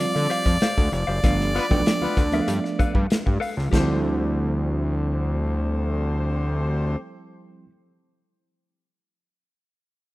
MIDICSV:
0, 0, Header, 1, 8, 480
1, 0, Start_track
1, 0, Tempo, 619835
1, 959, Time_signature, 4, 2, 24, 8
1, 7855, End_track
2, 0, Start_track
2, 0, Title_t, "Harmonica"
2, 0, Program_c, 0, 22
2, 0, Note_on_c, 0, 74, 102
2, 719, Note_off_c, 0, 74, 0
2, 726, Note_on_c, 0, 74, 96
2, 2372, Note_off_c, 0, 74, 0
2, 7855, End_track
3, 0, Start_track
3, 0, Title_t, "Clean electric guitar"
3, 0, Program_c, 1, 27
3, 229, Note_on_c, 1, 67, 83
3, 234, Note_on_c, 1, 72, 84
3, 241, Note_on_c, 1, 77, 90
3, 342, Note_off_c, 1, 67, 0
3, 344, Note_off_c, 1, 72, 0
3, 348, Note_off_c, 1, 77, 0
3, 480, Note_on_c, 1, 67, 78
3, 480, Note_on_c, 1, 72, 90
3, 488, Note_on_c, 1, 77, 94
3, 588, Note_off_c, 1, 67, 0
3, 588, Note_off_c, 1, 72, 0
3, 592, Note_off_c, 1, 77, 0
3, 829, Note_on_c, 1, 77, 60
3, 834, Note_on_c, 1, 72, 63
3, 839, Note_on_c, 1, 67, 50
3, 919, Note_off_c, 1, 77, 0
3, 921, Note_off_c, 1, 72, 0
3, 924, Note_off_c, 1, 67, 0
3, 958, Note_on_c, 1, 69, 82
3, 961, Note_on_c, 1, 71, 89
3, 963, Note_on_c, 1, 77, 99
3, 1066, Note_off_c, 1, 77, 0
3, 1067, Note_off_c, 1, 69, 0
3, 1068, Note_off_c, 1, 71, 0
3, 1326, Note_on_c, 1, 71, 58
3, 1326, Note_on_c, 1, 79, 70
3, 1331, Note_on_c, 1, 69, 57
3, 1407, Note_off_c, 1, 71, 0
3, 1407, Note_off_c, 1, 79, 0
3, 1410, Note_off_c, 1, 69, 0
3, 1808, Note_on_c, 1, 77, 71
3, 1812, Note_on_c, 1, 71, 74
3, 1817, Note_on_c, 1, 69, 69
3, 1959, Note_off_c, 1, 77, 0
3, 1961, Note_off_c, 1, 71, 0
3, 1963, Note_off_c, 1, 69, 0
3, 2161, Note_on_c, 1, 69, 91
3, 2165, Note_on_c, 1, 71, 93
3, 2170, Note_on_c, 1, 77, 79
3, 2269, Note_off_c, 1, 69, 0
3, 2269, Note_off_c, 1, 77, 0
3, 2270, Note_off_c, 1, 71, 0
3, 2633, Note_on_c, 1, 69, 91
3, 2637, Note_on_c, 1, 71, 87
3, 2643, Note_on_c, 1, 77, 107
3, 2745, Note_off_c, 1, 69, 0
3, 2747, Note_off_c, 1, 71, 0
3, 2750, Note_off_c, 1, 77, 0
3, 2877, Note_on_c, 1, 67, 79
3, 2904, Note_on_c, 1, 72, 88
3, 5960, Note_off_c, 1, 67, 0
3, 5974, Note_off_c, 1, 72, 0
3, 7855, End_track
4, 0, Start_track
4, 0, Title_t, "Horn section"
4, 0, Program_c, 2, 61
4, 1200, Note_on_c, 2, 62, 99
4, 1202, Note_on_c, 2, 65, 102
4, 1205, Note_on_c, 2, 59, 101
4, 1205, Note_on_c, 2, 71, 110
4, 1276, Note_off_c, 2, 62, 0
4, 1278, Note_off_c, 2, 65, 0
4, 1280, Note_off_c, 2, 59, 0
4, 1280, Note_off_c, 2, 71, 0
4, 1567, Note_on_c, 2, 59, 95
4, 1567, Note_on_c, 2, 65, 104
4, 1567, Note_on_c, 2, 71, 103
4, 1573, Note_on_c, 2, 62, 96
4, 1717, Note_off_c, 2, 59, 0
4, 1717, Note_off_c, 2, 71, 0
4, 1718, Note_off_c, 2, 65, 0
4, 1722, Note_off_c, 2, 62, 0
4, 2888, Note_on_c, 2, 57, 90
4, 2889, Note_on_c, 2, 67, 87
4, 2892, Note_on_c, 2, 60, 86
4, 2892, Note_on_c, 2, 72, 94
4, 5393, Note_off_c, 2, 57, 0
4, 5393, Note_off_c, 2, 67, 0
4, 5395, Note_off_c, 2, 60, 0
4, 5395, Note_off_c, 2, 72, 0
4, 7855, End_track
5, 0, Start_track
5, 0, Title_t, "Reed electric piano"
5, 0, Program_c, 3, 4
5, 0, Note_on_c, 3, 53, 82
5, 0, Note_on_c, 3, 55, 70
5, 0, Note_on_c, 3, 60, 71
5, 0, Note_on_c, 3, 65, 92
5, 425, Note_off_c, 3, 53, 0
5, 427, Note_off_c, 3, 55, 0
5, 429, Note_off_c, 3, 60, 0
5, 431, Note_off_c, 3, 65, 0
5, 952, Note_on_c, 3, 53, 84
5, 955, Note_on_c, 3, 57, 73
5, 960, Note_on_c, 3, 59, 72
5, 965, Note_on_c, 3, 62, 82
5, 1162, Note_off_c, 3, 53, 0
5, 1163, Note_off_c, 3, 57, 0
5, 1166, Note_off_c, 3, 59, 0
5, 1169, Note_off_c, 3, 62, 0
5, 1309, Note_on_c, 3, 53, 96
5, 1316, Note_on_c, 3, 57, 82
5, 1319, Note_on_c, 3, 59, 74
5, 1325, Note_on_c, 3, 62, 104
5, 1590, Note_off_c, 3, 53, 0
5, 1593, Note_off_c, 3, 57, 0
5, 1594, Note_off_c, 3, 59, 0
5, 1597, Note_off_c, 3, 62, 0
5, 1792, Note_on_c, 3, 53, 82
5, 1798, Note_on_c, 3, 57, 85
5, 1802, Note_on_c, 3, 59, 87
5, 1806, Note_on_c, 3, 62, 105
5, 2347, Note_off_c, 3, 53, 0
5, 2349, Note_off_c, 3, 57, 0
5, 2352, Note_off_c, 3, 59, 0
5, 2353, Note_off_c, 3, 62, 0
5, 2854, Note_on_c, 3, 53, 78
5, 2871, Note_on_c, 3, 55, 82
5, 2891, Note_on_c, 3, 60, 80
5, 2907, Note_on_c, 3, 64, 91
5, 5918, Note_off_c, 3, 53, 0
5, 5926, Note_off_c, 3, 55, 0
5, 5936, Note_off_c, 3, 60, 0
5, 5944, Note_off_c, 3, 64, 0
5, 7855, End_track
6, 0, Start_track
6, 0, Title_t, "Analog synth bass"
6, 0, Program_c, 4, 38
6, 123, Note_on_c, 4, 50, 102
6, 213, Note_off_c, 4, 50, 0
6, 354, Note_on_c, 4, 41, 78
6, 448, Note_off_c, 4, 41, 0
6, 600, Note_on_c, 4, 38, 85
6, 692, Note_off_c, 4, 38, 0
6, 715, Note_on_c, 4, 29, 104
6, 809, Note_off_c, 4, 29, 0
6, 839, Note_on_c, 4, 30, 88
6, 931, Note_off_c, 4, 30, 0
6, 957, Note_on_c, 4, 31, 110
6, 1234, Note_off_c, 4, 31, 0
6, 1323, Note_on_c, 4, 35, 102
6, 1414, Note_off_c, 4, 35, 0
6, 1555, Note_on_c, 4, 38, 51
6, 1604, Note_off_c, 4, 38, 0
6, 1683, Note_on_c, 4, 38, 91
6, 1865, Note_off_c, 4, 38, 0
6, 1918, Note_on_c, 4, 43, 101
6, 2011, Note_off_c, 4, 43, 0
6, 2163, Note_on_c, 4, 43, 48
6, 2210, Note_off_c, 4, 43, 0
6, 2286, Note_on_c, 4, 43, 107
6, 2376, Note_off_c, 4, 43, 0
6, 2533, Note_on_c, 4, 43, 88
6, 2620, Note_off_c, 4, 43, 0
6, 2766, Note_on_c, 4, 37, 78
6, 2856, Note_off_c, 4, 37, 0
6, 2885, Note_on_c, 4, 38, 107
6, 5391, Note_off_c, 4, 38, 0
6, 7855, End_track
7, 0, Start_track
7, 0, Title_t, "Muted clean electric guitar strokes"
7, 114, Note_on_c, 9, 29, 49
7, 191, Note_off_c, 9, 29, 0
7, 358, Note_on_c, 9, 29, 45
7, 436, Note_off_c, 9, 29, 0
7, 713, Note_on_c, 9, 29, 53
7, 791, Note_off_c, 9, 29, 0
7, 1075, Note_on_c, 9, 29, 45
7, 1153, Note_off_c, 9, 29, 0
7, 1205, Note_on_c, 9, 29, 51
7, 1282, Note_off_c, 9, 29, 0
7, 1444, Note_on_c, 9, 29, 45
7, 1522, Note_off_c, 9, 29, 0
7, 1566, Note_on_c, 9, 29, 41
7, 1643, Note_off_c, 9, 29, 0
7, 2045, Note_on_c, 9, 29, 50
7, 2123, Note_off_c, 9, 29, 0
7, 2279, Note_on_c, 9, 29, 46
7, 2356, Note_off_c, 9, 29, 0
7, 2526, Note_on_c, 9, 29, 43
7, 2603, Note_off_c, 9, 29, 0
7, 2769, Note_on_c, 9, 29, 44
7, 2847, Note_off_c, 9, 29, 0
7, 7855, End_track
8, 0, Start_track
8, 0, Title_t, "Drums"
8, 0, Note_on_c, 9, 42, 99
8, 74, Note_off_c, 9, 42, 0
8, 119, Note_on_c, 9, 38, 39
8, 196, Note_off_c, 9, 38, 0
8, 235, Note_on_c, 9, 42, 84
8, 312, Note_off_c, 9, 42, 0
8, 345, Note_on_c, 9, 42, 52
8, 355, Note_on_c, 9, 36, 86
8, 358, Note_on_c, 9, 38, 35
8, 423, Note_off_c, 9, 42, 0
8, 432, Note_off_c, 9, 36, 0
8, 435, Note_off_c, 9, 38, 0
8, 468, Note_on_c, 9, 42, 86
8, 479, Note_on_c, 9, 38, 127
8, 546, Note_off_c, 9, 42, 0
8, 557, Note_off_c, 9, 38, 0
8, 602, Note_on_c, 9, 36, 90
8, 604, Note_on_c, 9, 38, 37
8, 679, Note_off_c, 9, 36, 0
8, 681, Note_off_c, 9, 38, 0
8, 715, Note_on_c, 9, 42, 57
8, 792, Note_off_c, 9, 42, 0
8, 958, Note_on_c, 9, 42, 94
8, 959, Note_on_c, 9, 36, 120
8, 1036, Note_off_c, 9, 36, 0
8, 1036, Note_off_c, 9, 42, 0
8, 1089, Note_on_c, 9, 38, 35
8, 1166, Note_off_c, 9, 38, 0
8, 1209, Note_on_c, 9, 42, 72
8, 1286, Note_off_c, 9, 42, 0
8, 1324, Note_on_c, 9, 36, 107
8, 1327, Note_on_c, 9, 38, 33
8, 1402, Note_off_c, 9, 36, 0
8, 1404, Note_off_c, 9, 38, 0
8, 1442, Note_on_c, 9, 42, 92
8, 1449, Note_on_c, 9, 38, 110
8, 1519, Note_off_c, 9, 42, 0
8, 1527, Note_off_c, 9, 38, 0
8, 1681, Note_on_c, 9, 36, 90
8, 1683, Note_on_c, 9, 42, 75
8, 1758, Note_off_c, 9, 36, 0
8, 1760, Note_off_c, 9, 42, 0
8, 1798, Note_on_c, 9, 42, 61
8, 1875, Note_off_c, 9, 42, 0
8, 1919, Note_on_c, 9, 42, 103
8, 1997, Note_off_c, 9, 42, 0
8, 2050, Note_on_c, 9, 38, 37
8, 2127, Note_off_c, 9, 38, 0
8, 2164, Note_on_c, 9, 36, 88
8, 2168, Note_on_c, 9, 42, 66
8, 2242, Note_off_c, 9, 36, 0
8, 2246, Note_off_c, 9, 42, 0
8, 2283, Note_on_c, 9, 36, 88
8, 2361, Note_off_c, 9, 36, 0
8, 2403, Note_on_c, 9, 42, 92
8, 2414, Note_on_c, 9, 38, 117
8, 2481, Note_off_c, 9, 42, 0
8, 2492, Note_off_c, 9, 38, 0
8, 2530, Note_on_c, 9, 36, 83
8, 2608, Note_off_c, 9, 36, 0
8, 2649, Note_on_c, 9, 46, 64
8, 2727, Note_off_c, 9, 46, 0
8, 2778, Note_on_c, 9, 38, 31
8, 2855, Note_off_c, 9, 38, 0
8, 2886, Note_on_c, 9, 36, 93
8, 2891, Note_on_c, 9, 55, 78
8, 2898, Note_on_c, 9, 38, 93
8, 2963, Note_off_c, 9, 36, 0
8, 2968, Note_off_c, 9, 55, 0
8, 2975, Note_off_c, 9, 38, 0
8, 7855, End_track
0, 0, End_of_file